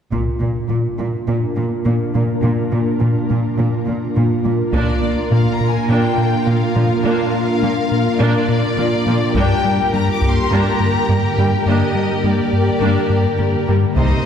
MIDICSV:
0, 0, Header, 1, 8, 480
1, 0, Start_track
1, 0, Tempo, 576923
1, 102, Time_signature, 4, 2, 24, 8
1, 11861, End_track
2, 0, Start_track
2, 0, Title_t, "Violin section"
2, 0, Program_c, 0, 48
2, 3946, Note_on_c, 0, 74, 61
2, 4390, Note_off_c, 0, 74, 0
2, 4422, Note_on_c, 0, 77, 54
2, 4578, Note_off_c, 0, 77, 0
2, 4592, Note_on_c, 0, 82, 59
2, 4744, Note_on_c, 0, 80, 60
2, 4747, Note_off_c, 0, 82, 0
2, 4899, Note_on_c, 0, 79, 60
2, 4903, Note_off_c, 0, 80, 0
2, 5371, Note_off_c, 0, 79, 0
2, 5376, Note_on_c, 0, 77, 59
2, 5848, Note_off_c, 0, 77, 0
2, 5858, Note_on_c, 0, 77, 72
2, 6800, Note_off_c, 0, 77, 0
2, 6822, Note_on_c, 0, 74, 80
2, 7780, Note_on_c, 0, 79, 91
2, 7782, Note_off_c, 0, 74, 0
2, 8251, Note_off_c, 0, 79, 0
2, 8259, Note_on_c, 0, 82, 79
2, 8417, Note_off_c, 0, 82, 0
2, 8417, Note_on_c, 0, 86, 69
2, 8576, Note_off_c, 0, 86, 0
2, 8583, Note_on_c, 0, 84, 74
2, 8738, Note_on_c, 0, 82, 78
2, 8742, Note_off_c, 0, 84, 0
2, 9458, Note_on_c, 0, 79, 62
2, 9460, Note_off_c, 0, 82, 0
2, 9700, Note_off_c, 0, 79, 0
2, 9700, Note_on_c, 0, 75, 64
2, 10171, Note_off_c, 0, 75, 0
2, 10177, Note_on_c, 0, 74, 49
2, 11380, Note_off_c, 0, 74, 0
2, 11616, Note_on_c, 0, 75, 64
2, 11861, Note_off_c, 0, 75, 0
2, 11861, End_track
3, 0, Start_track
3, 0, Title_t, "Violin section"
3, 0, Program_c, 1, 48
3, 3936, Note_on_c, 1, 65, 36
3, 3938, Note_on_c, 1, 70, 38
3, 7746, Note_off_c, 1, 65, 0
3, 7746, Note_off_c, 1, 70, 0
3, 7774, Note_on_c, 1, 67, 53
3, 7774, Note_on_c, 1, 70, 49
3, 11418, Note_off_c, 1, 67, 0
3, 11418, Note_off_c, 1, 70, 0
3, 11609, Note_on_c, 1, 63, 36
3, 11613, Note_on_c, 1, 72, 41
3, 11850, Note_off_c, 1, 63, 0
3, 11852, Note_off_c, 1, 72, 0
3, 11861, End_track
4, 0, Start_track
4, 0, Title_t, "Ambient pad"
4, 0, Program_c, 2, 92
4, 105, Note_on_c, 2, 62, 50
4, 108, Note_on_c, 2, 58, 44
4, 108, Note_on_c, 2, 65, 46
4, 112, Note_on_c, 2, 70, 47
4, 3910, Note_off_c, 2, 62, 0
4, 3911, Note_off_c, 2, 58, 0
4, 3911, Note_off_c, 2, 65, 0
4, 3913, Note_off_c, 2, 70, 0
4, 3944, Note_on_c, 2, 70, 49
4, 3950, Note_on_c, 2, 58, 58
4, 3952, Note_on_c, 2, 62, 57
4, 3953, Note_on_c, 2, 65, 51
4, 7749, Note_off_c, 2, 70, 0
4, 7752, Note_off_c, 2, 58, 0
4, 7753, Note_off_c, 2, 62, 0
4, 7754, Note_off_c, 2, 65, 0
4, 7777, Note_on_c, 2, 70, 50
4, 7778, Note_on_c, 2, 58, 53
4, 7778, Note_on_c, 2, 67, 57
4, 7779, Note_on_c, 2, 50, 60
4, 11586, Note_off_c, 2, 70, 0
4, 11587, Note_off_c, 2, 50, 0
4, 11587, Note_off_c, 2, 58, 0
4, 11618, Note_off_c, 2, 67, 0
4, 11621, Note_on_c, 2, 55, 50
4, 11623, Note_on_c, 2, 60, 49
4, 11627, Note_on_c, 2, 72, 52
4, 11628, Note_on_c, 2, 67, 54
4, 11861, Note_off_c, 2, 55, 0
4, 11861, Note_off_c, 2, 60, 0
4, 11861, Note_off_c, 2, 67, 0
4, 11861, Note_off_c, 2, 72, 0
4, 11861, End_track
5, 0, Start_track
5, 0, Title_t, "Viola section"
5, 0, Program_c, 3, 48
5, 3940, Note_on_c, 3, 58, 43
5, 3943, Note_on_c, 3, 62, 49
5, 4164, Note_off_c, 3, 58, 0
5, 4165, Note_off_c, 3, 62, 0
5, 4418, Note_on_c, 3, 58, 37
5, 4420, Note_off_c, 3, 58, 0
5, 4420, Note_on_c, 3, 58, 37
5, 4487, Note_off_c, 3, 58, 0
5, 4904, Note_on_c, 3, 62, 43
5, 4905, Note_on_c, 3, 58, 50
5, 5126, Note_off_c, 3, 62, 0
5, 5127, Note_off_c, 3, 58, 0
5, 5379, Note_on_c, 3, 58, 41
5, 5380, Note_off_c, 3, 58, 0
5, 5380, Note_on_c, 3, 58, 41
5, 5446, Note_off_c, 3, 58, 0
5, 5619, Note_on_c, 3, 58, 44
5, 5623, Note_on_c, 3, 53, 49
5, 5686, Note_off_c, 3, 58, 0
5, 5689, Note_off_c, 3, 53, 0
5, 5863, Note_on_c, 3, 62, 46
5, 5864, Note_on_c, 3, 58, 67
5, 6086, Note_off_c, 3, 58, 0
5, 6086, Note_off_c, 3, 62, 0
5, 6345, Note_on_c, 3, 58, 44
5, 6346, Note_off_c, 3, 58, 0
5, 6346, Note_on_c, 3, 58, 46
5, 6413, Note_off_c, 3, 58, 0
5, 6818, Note_on_c, 3, 58, 61
5, 6820, Note_on_c, 3, 62, 66
5, 7043, Note_off_c, 3, 58, 0
5, 7044, Note_off_c, 3, 62, 0
5, 7299, Note_on_c, 3, 58, 50
5, 7301, Note_off_c, 3, 58, 0
5, 7301, Note_on_c, 3, 58, 50
5, 7367, Note_off_c, 3, 58, 0
5, 7548, Note_on_c, 3, 53, 47
5, 7551, Note_on_c, 3, 58, 53
5, 7614, Note_off_c, 3, 53, 0
5, 7618, Note_off_c, 3, 58, 0
5, 7788, Note_on_c, 3, 58, 58
5, 7788, Note_on_c, 3, 62, 60
5, 8008, Note_off_c, 3, 58, 0
5, 8008, Note_off_c, 3, 62, 0
5, 8262, Note_on_c, 3, 58, 44
5, 8267, Note_off_c, 3, 58, 0
5, 8267, Note_on_c, 3, 58, 39
5, 8333, Note_off_c, 3, 58, 0
5, 8740, Note_on_c, 3, 58, 54
5, 8744, Note_on_c, 3, 62, 44
5, 8964, Note_off_c, 3, 58, 0
5, 8966, Note_off_c, 3, 62, 0
5, 9220, Note_on_c, 3, 58, 35
5, 9221, Note_off_c, 3, 58, 0
5, 9221, Note_on_c, 3, 58, 41
5, 9288, Note_off_c, 3, 58, 0
5, 9471, Note_on_c, 3, 58, 37
5, 9472, Note_on_c, 3, 55, 44
5, 9538, Note_off_c, 3, 58, 0
5, 9539, Note_off_c, 3, 55, 0
5, 9707, Note_on_c, 3, 62, 45
5, 9708, Note_on_c, 3, 58, 44
5, 9928, Note_off_c, 3, 58, 0
5, 9928, Note_off_c, 3, 62, 0
5, 10188, Note_on_c, 3, 58, 32
5, 10189, Note_off_c, 3, 58, 0
5, 10189, Note_on_c, 3, 58, 36
5, 10256, Note_off_c, 3, 58, 0
5, 10656, Note_on_c, 3, 58, 35
5, 10658, Note_on_c, 3, 62, 40
5, 10882, Note_off_c, 3, 58, 0
5, 10883, Note_off_c, 3, 62, 0
5, 11137, Note_on_c, 3, 58, 41
5, 11138, Note_off_c, 3, 58, 0
5, 11138, Note_on_c, 3, 58, 33
5, 11204, Note_off_c, 3, 58, 0
5, 11377, Note_on_c, 3, 55, 33
5, 11380, Note_on_c, 3, 58, 38
5, 11444, Note_off_c, 3, 55, 0
5, 11446, Note_off_c, 3, 58, 0
5, 11616, Note_on_c, 3, 60, 38
5, 11618, Note_on_c, 3, 55, 42
5, 11844, Note_off_c, 3, 60, 0
5, 11845, Note_off_c, 3, 55, 0
5, 11861, End_track
6, 0, Start_track
6, 0, Title_t, "Analog synth bass"
6, 0, Program_c, 4, 38
6, 104, Note_on_c, 4, 46, 66
6, 247, Note_off_c, 4, 46, 0
6, 349, Note_on_c, 4, 46, 39
6, 491, Note_off_c, 4, 46, 0
6, 583, Note_on_c, 4, 46, 47
6, 727, Note_off_c, 4, 46, 0
6, 827, Note_on_c, 4, 46, 47
6, 969, Note_off_c, 4, 46, 0
6, 1066, Note_on_c, 4, 46, 70
6, 1209, Note_off_c, 4, 46, 0
6, 1309, Note_on_c, 4, 58, 51
6, 1451, Note_off_c, 4, 58, 0
6, 1544, Note_on_c, 4, 46, 48
6, 1688, Note_off_c, 4, 46, 0
6, 1788, Note_on_c, 4, 46, 44
6, 1930, Note_off_c, 4, 46, 0
6, 2025, Note_on_c, 4, 46, 73
6, 2168, Note_off_c, 4, 46, 0
6, 2268, Note_on_c, 4, 46, 46
6, 2410, Note_off_c, 4, 46, 0
6, 2508, Note_on_c, 4, 46, 50
6, 2650, Note_off_c, 4, 46, 0
6, 2750, Note_on_c, 4, 46, 47
6, 2892, Note_off_c, 4, 46, 0
6, 2995, Note_on_c, 4, 46, 77
6, 3135, Note_off_c, 4, 46, 0
6, 3227, Note_on_c, 4, 58, 54
6, 3370, Note_off_c, 4, 58, 0
6, 3469, Note_on_c, 4, 46, 52
6, 3611, Note_off_c, 4, 46, 0
6, 3708, Note_on_c, 4, 46, 50
6, 3850, Note_off_c, 4, 46, 0
6, 3946, Note_on_c, 4, 46, 68
6, 4089, Note_off_c, 4, 46, 0
6, 4184, Note_on_c, 4, 58, 47
6, 4327, Note_off_c, 4, 58, 0
6, 4422, Note_on_c, 4, 46, 52
6, 4566, Note_off_c, 4, 46, 0
6, 4666, Note_on_c, 4, 46, 50
6, 4809, Note_off_c, 4, 46, 0
6, 4903, Note_on_c, 4, 46, 67
6, 5047, Note_off_c, 4, 46, 0
6, 5140, Note_on_c, 4, 46, 48
6, 5285, Note_off_c, 4, 46, 0
6, 5385, Note_on_c, 4, 46, 50
6, 5528, Note_off_c, 4, 46, 0
6, 5623, Note_on_c, 4, 46, 53
6, 5767, Note_off_c, 4, 46, 0
6, 5864, Note_on_c, 4, 46, 68
6, 6008, Note_off_c, 4, 46, 0
6, 6105, Note_on_c, 4, 58, 54
6, 6248, Note_off_c, 4, 58, 0
6, 6344, Note_on_c, 4, 46, 49
6, 6487, Note_off_c, 4, 46, 0
6, 6585, Note_on_c, 4, 46, 53
6, 6728, Note_off_c, 4, 46, 0
6, 6826, Note_on_c, 4, 46, 70
6, 6968, Note_off_c, 4, 46, 0
6, 7060, Note_on_c, 4, 46, 51
6, 7205, Note_off_c, 4, 46, 0
6, 7306, Note_on_c, 4, 46, 54
6, 7448, Note_off_c, 4, 46, 0
6, 7542, Note_on_c, 4, 46, 56
6, 7686, Note_off_c, 4, 46, 0
6, 7786, Note_on_c, 4, 43, 82
6, 7929, Note_off_c, 4, 43, 0
6, 8026, Note_on_c, 4, 55, 55
6, 8168, Note_off_c, 4, 55, 0
6, 8264, Note_on_c, 4, 43, 55
6, 8407, Note_off_c, 4, 43, 0
6, 8502, Note_on_c, 4, 43, 50
6, 8646, Note_off_c, 4, 43, 0
6, 8743, Note_on_c, 4, 43, 66
6, 8887, Note_off_c, 4, 43, 0
6, 8984, Note_on_c, 4, 43, 54
6, 9127, Note_off_c, 4, 43, 0
6, 9224, Note_on_c, 4, 43, 48
6, 9367, Note_off_c, 4, 43, 0
6, 9465, Note_on_c, 4, 43, 52
6, 9608, Note_off_c, 4, 43, 0
6, 9702, Note_on_c, 4, 43, 74
6, 9846, Note_off_c, 4, 43, 0
6, 9941, Note_on_c, 4, 55, 50
6, 10085, Note_off_c, 4, 55, 0
6, 10182, Note_on_c, 4, 43, 54
6, 10326, Note_off_c, 4, 43, 0
6, 10424, Note_on_c, 4, 43, 48
6, 10567, Note_off_c, 4, 43, 0
6, 10659, Note_on_c, 4, 43, 65
6, 10804, Note_off_c, 4, 43, 0
6, 10897, Note_on_c, 4, 43, 51
6, 11042, Note_off_c, 4, 43, 0
6, 11144, Note_on_c, 4, 43, 47
6, 11287, Note_off_c, 4, 43, 0
6, 11388, Note_on_c, 4, 43, 44
6, 11530, Note_off_c, 4, 43, 0
6, 11619, Note_on_c, 4, 36, 70
6, 11763, Note_off_c, 4, 36, 0
6, 11861, End_track
7, 0, Start_track
7, 0, Title_t, "Cello section"
7, 0, Program_c, 5, 48
7, 95, Note_on_c, 5, 46, 41
7, 162, Note_off_c, 5, 46, 0
7, 340, Note_on_c, 5, 46, 32
7, 406, Note_off_c, 5, 46, 0
7, 574, Note_on_c, 5, 46, 30
7, 641, Note_off_c, 5, 46, 0
7, 818, Note_on_c, 5, 46, 34
7, 885, Note_off_c, 5, 46, 0
7, 1062, Note_on_c, 5, 46, 43
7, 1128, Note_off_c, 5, 46, 0
7, 1304, Note_on_c, 5, 46, 36
7, 1371, Note_off_c, 5, 46, 0
7, 1541, Note_on_c, 5, 46, 45
7, 1607, Note_off_c, 5, 46, 0
7, 1782, Note_on_c, 5, 46, 43
7, 1848, Note_off_c, 5, 46, 0
7, 2022, Note_on_c, 5, 46, 55
7, 2088, Note_off_c, 5, 46, 0
7, 2265, Note_on_c, 5, 46, 42
7, 2332, Note_off_c, 5, 46, 0
7, 2503, Note_on_c, 5, 46, 44
7, 2569, Note_off_c, 5, 46, 0
7, 2746, Note_on_c, 5, 46, 42
7, 2812, Note_off_c, 5, 46, 0
7, 2980, Note_on_c, 5, 46, 53
7, 3046, Note_off_c, 5, 46, 0
7, 3220, Note_on_c, 5, 46, 35
7, 3286, Note_off_c, 5, 46, 0
7, 3462, Note_on_c, 5, 46, 43
7, 3528, Note_off_c, 5, 46, 0
7, 3701, Note_on_c, 5, 46, 33
7, 3768, Note_off_c, 5, 46, 0
7, 3943, Note_on_c, 5, 46, 50
7, 4009, Note_off_c, 5, 46, 0
7, 4419, Note_on_c, 5, 46, 36
7, 4486, Note_off_c, 5, 46, 0
7, 4900, Note_on_c, 5, 46, 53
7, 4967, Note_off_c, 5, 46, 0
7, 5385, Note_on_c, 5, 46, 45
7, 5452, Note_off_c, 5, 46, 0
7, 5625, Note_on_c, 5, 46, 42
7, 5691, Note_off_c, 5, 46, 0
7, 5861, Note_on_c, 5, 46, 56
7, 5928, Note_off_c, 5, 46, 0
7, 6341, Note_on_c, 5, 46, 44
7, 6408, Note_off_c, 5, 46, 0
7, 6822, Note_on_c, 5, 46, 60
7, 6889, Note_off_c, 5, 46, 0
7, 7306, Note_on_c, 5, 46, 55
7, 7373, Note_off_c, 5, 46, 0
7, 7540, Note_on_c, 5, 46, 44
7, 7606, Note_off_c, 5, 46, 0
7, 7783, Note_on_c, 5, 43, 67
7, 7850, Note_off_c, 5, 43, 0
7, 8267, Note_on_c, 5, 43, 41
7, 8334, Note_off_c, 5, 43, 0
7, 8744, Note_on_c, 5, 43, 51
7, 8810, Note_off_c, 5, 43, 0
7, 9230, Note_on_c, 5, 43, 41
7, 9296, Note_off_c, 5, 43, 0
7, 9464, Note_on_c, 5, 43, 36
7, 9531, Note_off_c, 5, 43, 0
7, 9706, Note_on_c, 5, 43, 44
7, 9772, Note_off_c, 5, 43, 0
7, 10184, Note_on_c, 5, 43, 35
7, 10250, Note_off_c, 5, 43, 0
7, 10658, Note_on_c, 5, 43, 45
7, 10724, Note_off_c, 5, 43, 0
7, 11135, Note_on_c, 5, 43, 37
7, 11201, Note_off_c, 5, 43, 0
7, 11377, Note_on_c, 5, 43, 34
7, 11443, Note_off_c, 5, 43, 0
7, 11617, Note_on_c, 5, 48, 41
7, 11684, Note_off_c, 5, 48, 0
7, 11861, End_track
8, 0, Start_track
8, 0, Title_t, "Taiko and cinematic ensemble drums"
8, 103, Note_on_c, 9, 41, 40
8, 186, Note_off_c, 9, 41, 0
8, 3936, Note_on_c, 9, 41, 51
8, 4020, Note_off_c, 9, 41, 0
8, 7778, Note_on_c, 9, 41, 52
8, 7862, Note_off_c, 9, 41, 0
8, 8499, Note_on_c, 9, 41, 33
8, 8582, Note_off_c, 9, 41, 0
8, 11615, Note_on_c, 9, 41, 52
8, 11699, Note_off_c, 9, 41, 0
8, 11861, End_track
0, 0, End_of_file